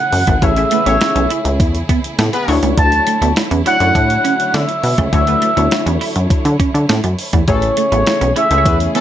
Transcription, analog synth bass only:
0.13 0.24 F#2 medium
0.28 0.39 G#1 loud
0.42 0.65 A1 medium
0.86 0.98 A1 loud
1.16 1.27 B1 loud
1.45 1.61 C#2 medium
1.60 1.82 E2 loud
2.19 2.30 A2 loud
2.48 2.59 D2 loud
2.63 2.74 C#2 medium
2.78 3.00 D2 medium
3.22 3.33 D2 loud
3.51 3.62 E2 loud
3.81 3.92 F#2 medium
3.95 4.18 A2 medium
4.54 4.65 D3 loud
4.84 4.95 B2 loud
4.98 5.09 C#2 loud
5.13 5.35 D2 loud
5.57 5.68 D2 medium
5.86 5.98 E2 loud
6.16 6.27 F#2 medium
6.45 6.56 D3 loud
6.74 6.86 D3 loud
6.89 7.01 A2 loud
7.04 7.15 F#2 medium
7.33 7.45 E2 medium
7.48 7.70 A1 loud
7.92 8.03 A1 loud
8.21 8.33 B1 loud
8.51 8.67 C#2 medium
8.66 8.88 E2 loud

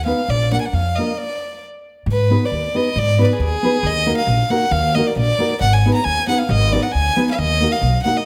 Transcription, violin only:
0.06 0.32 F5 medium
0.30 0.52 D5 loud
0.53 0.60 F#5 medium
0.61 0.67 G#5 medium
0.66 0.76 F#5 medium
0.74 0.97 F5 medium
0.96 1.19 D#5 medium
1.18 1.62 D5 medium
2.12 2.47 B4 medium
2.46 2.78 D5 medium
2.77 3.00 D#5 medium
2.99 3.23 D5 loud
3.21 3.26 B4 medium
3.21 3.31 D5 medium
3.29 3.42 G#4 medium
3.29 3.34 B4 medium
3.44 3.88 G#4 loud
3.87 4.17 D#5 loud
4.18 4.52 F5 medium
4.50 4.73 F#5 medium
4.71 4.97 F5 loud
4.95 5.08 D#5 medium
5.07 5.17 D5 medium
5.18 5.59 D5 loud
5.62 5.75 F#5 loud
5.73 5.94 G#5 medium
5.94 6.06 A#5 medium
6.04 6.27 G#5 loud
6.29 6.40 F#5 medium
6.38 6.53 F5 medium
6.51 6.74 D#5 loud
6.72 6.84 D5 loud
6.83 6.93 F#5 medium
6.92 7.27 G#5 loud
7.31 7.40 F5 medium
7.38 7.74 D#5 loud
7.72 8.03 F5 medium
8.03 8.19 F#5 medium
8.17 8.25 D#5 medium

